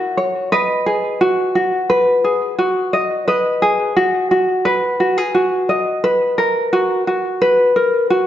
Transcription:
Already playing: F#4 A#4 C#5
0.17 C#5
0.52 B4 D#5
0.86 G#4
1.21 F#4
1.55 F#4
1.90 B4
2.24 G#4
2.58 F#4
2.93 D#5
3.28 B4 D#5
3.62 G#4
3.96 F#4
4.31 F#4
4.65 B4
5.00 F#4
5.18 G#4
5.35 F#4
5.69 D#5
6.04 B4
6.38 A#4
6.73 F#4
7.07 F#4
7.42 B4
7.76 A#4
8.10 F#4

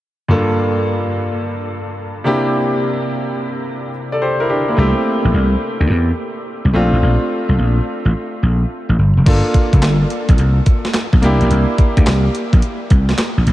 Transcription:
0.28 G2 A#3 D4 F4 A4
2.24 C3 A#3 D4 E4 G4
4.12 A4 D5
4.22 G4 C5
4.40 E4 A#4
4.49 D4 G4
4.68 A#3 E4
4.77 C2 A3 C4 E4 G4
5.25 A1
5.34 C2
5.80 D2
5.90 E2
6.65 C2
6.73 A#1 A3 C4 D4 F4
6.93 A1
7.02 A#1
7.49 C2
7.58 A#1
8.05 A1
8.43 A#1
8.89 A1
8.99 G1
9.17 F1
9.26 G1 A#3 D4 F4 A4, kick, closed hi-hat, crash
9.54 kick, closed hi-hat
9.73 F1, kick, closed hi-hat
9.82 G1, snare, clap, closed hi-hat
10.10 closed hi-hat
10.29 A#1, kick, closed hi-hat
10.38 C2, closed hi-hat
10.66 kick, closed hi-hat
10.85 snare, closed hi-hat
10.94 snare, clap, closed hi-hat
11.13 A#1, kick
11.22 C2 A#3 D4 E4 G4, closed hi-hat
11.41 A#1, closed hi-hat
11.51 C2, closed hi-hat
11.78 kick, closed hi-hat
11.97 D2, kick, closed hi-hat
12.07 C2, snare, clap, closed hi-hat
12.35 closed hi-hat
12.53 A#1, kick, closed hi-hat
12.62 closed hi-hat
12.90 C2, kick, closed hi-hat
13.09 snare, closed hi-hat
13.18 snare, clap, closed hi-hat
13.37 A#1
13.47 A1, closed hi-hat

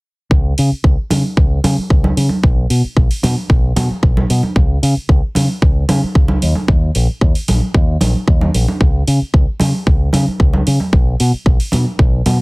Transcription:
0.31 C#2, kick
0.58 C#3, open hi-hat
0.72 muted fingered electric bass stroke
0.84 C#2, kick
1.10 C#3, open hi-hat, high conga
1.37 C#2, kick
1.64 C#3, open hi-hat, high conga
1.78 muted fingered electric bass stroke
1.90 C#2, kick
2.04 high conga
2.17 C#3, open hi-hat
2.29 high conga
2.43 B1, kick
2.70 B2, open hi-hat
2.84 muted fingered electric bass stroke
2.97 B1, kick
3.11 open hi-hat
3.23 B2, open hi-hat, high conga
3.50 B1, kick
3.76 B2, open hi-hat, high conga
3.90 muted fingered electric bass stroke
4.03 B1, kick
4.17 high conga
4.30 B2, open hi-hat
4.43 high conga
4.56 C#2, kick
4.83 C#3, open hi-hat
4.97 muted fingered electric bass stroke
5.09 C#2, kick
5.35 C#3, open hi-hat, high conga
5.62 C#2, kick
5.89 C#3, open hi-hat, high conga
6.03 muted fingered electric bass stroke
6.15 C#2, kick
6.28 high conga
6.42 D#2, open hi-hat
6.55 high conga
6.68 D#2, kick
6.95 A#1, open hi-hat
7.09 muted fingered electric bass stroke
7.21 D#2, kick
7.35 open hi-hat
7.48 A#1, open hi-hat, high conga
7.74 D#2, kick
8.01 A#1, open hi-hat, high conga
8.15 muted fingered electric bass stroke
8.28 D#2, kick
8.41 high conga
8.54 A#1, open hi-hat
8.68 high conga
8.81 C#2, kick
9.07 C#3, open hi-hat
9.21 muted fingered electric bass stroke
9.34 C#2, kick
9.60 C#3, open hi-hat, high conga
9.87 C#2, kick
10.13 C#3, open hi-hat, high conga
10.27 muted fingered electric bass stroke
10.40 C#2, kick
10.53 high conga
10.67 C#3, open hi-hat
10.80 high conga
10.93 B1, kick
11.20 B2, open hi-hat
11.33 muted fingered electric bass stroke
11.46 B1, kick
11.60 open hi-hat
11.72 B2, open hi-hat, high conga
11.99 B1, kick
12.26 B2, open hi-hat, high conga

